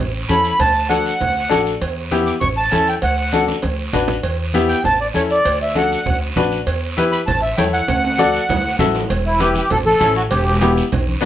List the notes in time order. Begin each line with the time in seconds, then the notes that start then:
0.00 A1
0.29 E2 C#4 E4 A4 B5, cowbell, high conga, short guiro
0.44 short guiro
0.59 D2 A5, cowbell, high conga, low conga, long guiro
0.89 D4 F#4 A4 F#5, cowbell, high conga, short guiro
1.06 short guiro
1.20 D2, cowbell, high conga, low conga, long guiro
1.49 A1 D4 F#4 A4, cowbell, high conga, short guiro
1.66 short guiro
1.81 E2, cowbell, high conga, long guiro
2.11 B3 E4 G4, cowbell, high conga, short guiro
2.26 D6, short guiro
2.41 A1 C#6, cowbell, high conga, low conga, long guiro
2.57 A5
2.71 E2 C#4 E4 A4, cowbell, high conga, short guiro
2.87 G5, short guiro
3.02 D2 F#5, cowbell, high conga, long guiro
3.32 D4 F#4 A4, cowbell, high conga, short guiro
3.48 high conga, short guiro
3.62 D2, cowbell, high conga, long guiro
3.93 A1 D4 F#4 B4, cowbell, low conga, short guiro
4.08 low conga, short guiro
4.23 E2, cowbell, high conga, long guiro
4.54 B3 E4 G4, cowbell, high conga, short guiro
4.68 G5, short guiro
4.84 A1 A5, cowbell, high conga, low conga, long guiro
5.01 D5
5.14 E2 C#4 E4 A4 C#5, cowbell, high conga, short guiro
5.30 D5, short guiro
5.45 D2, cowbell, high conga, long guiro
5.62 E5
5.75 D4 F#4 A4 F#5, cowbell, high conga, short guiro
5.92 short guiro
6.06 D2, cowbell, high conga, low conga, long guiro
6.36 A1 D4 F#4 B4, cowbell, high conga, low conga, short guiro
6.52 short guiro
6.67 E2, cowbell, high conga, long guiro
6.97 E4 G4 B4, cowbell, high conga, short guiro
7.12 B5, short guiro
7.26 A1 A5, cowbell, high conga, low conga, long guiro
7.42 E5
7.58 E2 E4 A4 C#5 G5, cowbell, high conga, low timbale, short guiro
7.73 F#5, short guiro
7.88 D2, cowbell, high conga, low conga, high timbale, long guiro
8.04 high timbale
8.18 F#4 A4 D5, cowbell, high conga, short guiro
8.33 short guiro
8.49 D2, cowbell, high conga, low conga, low timbale, long guiro
8.79 A1 F#4 A4 E5, cowbell, high conga, low conga, low timbale, short guiro
8.95 low timbale, short guiro
9.10 E1, cowbell, high conga, long guiro
9.26 E4
9.40 E4 G4 B4, cowbell, high conga, short guiro
9.55 G4, high conga, short guiro
9.70 A1 A4, cowbell, high conga, low conga, long guiro
9.86 A4, high conga
10.00 A1 C#4 E4 A4, cowbell, high conga, short guiro
10.15 F#4, short guiro
10.30 E1 G4, cowbell, high conga, long guiro
10.61 B3 E4 G4, cowbell, high conga, short guiro
10.77 short guiro
10.92 B1, cowbell, high conga, low conga, long guiro
11.08 high conga
11.21 B3 D4 F#4